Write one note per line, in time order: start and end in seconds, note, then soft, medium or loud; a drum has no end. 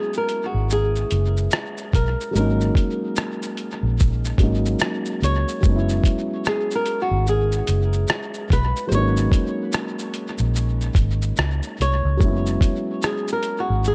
0.00 2.28 F#3 medium
0.00 2.29 G#3 medium
0.00 2.34 B3 medium
0.00 2.31 C#4 medium
0.00 2.32 E4 medium
0.00 0.17 G#4 medium
0.13 shaker medium
0.18 0.45 A#4 medium
0.29 closed hi-hat medium
0.29 shaker soft
0.46 0.72 F#4 medium
0.54 1.03 G#1 medium
0.70 1.95 G#4 medium
0.70 shaker medium
0.96 shaker soft
1.11 1.47 F#1 medium
1.11 closed hi-hat medium
1.11 shaker soft
1.37 shaker soft
1.51 cross-stick loud
1.51 shaker medium
1.77 shaker soft
1.93 2.15 B1 medium
1.93 2.32 A#4 medium
1.93 kick medium
1.93 closed hi-hat medium
1.93 shaker soft
2.21 shaker soft
2.31 4.34 F#3 medium
2.31 4.35 G#3 medium
2.35 2.70 G#1 medium
2.35 4.37 A#3 medium
2.35 4.37 C#4 medium
2.35 3.55 A#4 medium
2.35 shaker medium
2.40 4.39 D#4 medium
2.61 shaker soft
2.75 kick medium
2.75 closed hi-hat medium
2.75 shaker soft
3.16 cross-stick loud
3.16 shaker medium
3.42 shaker medium
3.57 closed hi-hat soft
3.57 shaker soft
3.83 4.32 A#1 medium
4.00 kick medium
4.00 shaker medium
4.25 shaker soft
4.38 4.74 G#1 medium
4.38 5.59 F#3 medium
4.38 5.61 G#3 medium
4.38 5.64 A#3 medium
4.38 5.64 C#4 soft
4.38 kick loud
4.38 closed hi-hat medium
4.38 shaker soft
4.43 5.65 D#4 medium
4.66 shaker soft
4.79 cross-stick loud
4.79 shaker medium
5.06 shaker soft
5.22 5.43 C#2 medium
5.22 6.50 C#5 loud
5.22 closed hi-hat medium
5.22 shaker soft
5.48 shaker soft
5.61 5.98 F#1 loud
5.61 8.86 F#3 medium
5.61 8.88 G#3 medium
5.61 kick loud
5.61 shaker medium
5.65 8.89 B3 medium
5.65 8.90 C#4 medium
5.65 5.74 D#4 medium
5.76 8.94 E4 medium
5.89 shaker soft
6.04 kick medium
6.04 closed hi-hat medium
6.04 shaker soft
6.45 6.75 G#4 medium
6.45 cross-stick loud
6.45 shaker medium
6.71 shaker soft
6.75 7.00 A#4 medium
6.86 closed hi-hat medium
6.86 shaker soft
7.02 7.29 F#4 medium
7.11 7.60 G#1 medium
7.27 8.55 G#4 medium
7.27 shaker medium
7.52 shaker soft
7.67 8.04 F#1 medium
7.67 closed hi-hat medium
7.67 shaker soft
7.93 shaker soft
8.08 cross-stick loud
8.08 shaker medium
8.34 shaker soft
8.50 8.72 B1 medium
8.50 8.88 B4 medium
8.50 kick medium
8.50 closed hi-hat medium
8.50 shaker soft
8.76 shaker soft
8.87 12.14 F#3 medium
8.87 12.16 G#3 medium
8.87 8.93 C5 medium
8.92 9.27 G#1 loud
8.92 12.17 A#3 medium
8.92 9.01 C4 soft
8.92 10.13 C#5 medium
8.92 shaker medium
8.96 12.19 D#4 medium
9.00 12.21 C#4 medium
9.17 shaker soft
9.32 kick medium
9.32 closed hi-hat medium
9.32 shaker soft
9.72 cross-stick loud
9.72 shaker medium
9.99 shaker medium
10.14 closed hi-hat medium
10.14 shaker soft
10.38 10.89 A#1 medium
10.38 shaker soft
10.56 shaker medium
10.81 shaker soft
10.95 11.31 G#1 medium
10.95 kick medium
10.95 closed hi-hat medium
10.95 shaker soft
11.22 shaker soft
11.37 11.60 C#2 medium
11.37 cross-stick loud
11.37 shaker medium
11.63 shaker soft
11.80 12.01 C2 medium
11.80 13.00 C#5 loud
11.80 closed hi-hat medium
11.80 shaker soft
12.05 12.19 C#2 medium
12.17 13.95 F#3 medium
12.17 13.95 G#3 medium
12.17 kick loud
12.17 shaker medium
12.21 12.29 A#3 soft
12.21 13.95 C#4 medium
12.21 13.95 E4 medium
12.28 13.95 B3 medium
12.46 shaker medium
12.61 kick medium
12.61 closed hi-hat medium
12.61 shaker soft
13.02 13.32 G#4 medium
13.02 cross-stick loud
13.02 shaker medium
13.28 shaker medium
13.33 13.60 A#4 medium
13.43 closed hi-hat medium
13.43 shaker soft
13.60 13.87 F#4 medium
13.70 13.95 G#1 medium
13.84 13.95 G#4 medium
13.84 shaker medium